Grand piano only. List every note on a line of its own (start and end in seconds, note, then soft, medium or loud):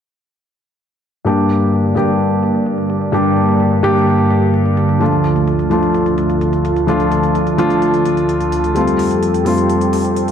1.25 1.93 G2 medium
1.25 1.93 G3 medium
1.25 1.93 A#3 medium
1.25 1.94 D4 medium
1.25 1.94 G4 medium
1.95 3.10 G2 medium
1.95 3.10 G3 medium
1.95 3.10 A#3 medium
1.95 3.11 D4 medium
1.95 3.11 G4 medium
3.12 3.80 G2 medium
3.12 3.80 G3 medium
3.12 3.81 A#3 medium
3.12 3.81 D4 medium
3.12 3.81 G4 medium
3.83 3.93 G2 medium
3.83 3.93 G3 medium
3.83 3.93 A#3 medium
3.83 3.93 D4 medium
3.83 3.93 G4 loud
4.99 5.68 F3 medium
4.99 5.68 A3 medium
4.99 5.68 D4 medium
4.99 5.69 F4 medium
5.70 6.85 F3 medium
5.70 6.85 A3 medium
5.70 6.86 D4 medium
5.70 6.86 F4 medium
6.87 7.55 F3 medium
6.87 7.56 A3 medium
6.87 7.56 D4 medium
6.87 7.56 F4 medium
7.58 7.68 F3 medium
7.58 7.68 A3 medium
7.58 7.68 D4 medium
7.58 7.68 F4 loud
8.75 9.43 G3 medium
8.75 9.43 A3 medium
8.75 9.43 C4 medium
8.75 9.44 F4 medium
9.45 10.31 G3 medium
9.45 10.31 A3 medium
9.45 10.31 C4 medium
9.45 10.31 F4 medium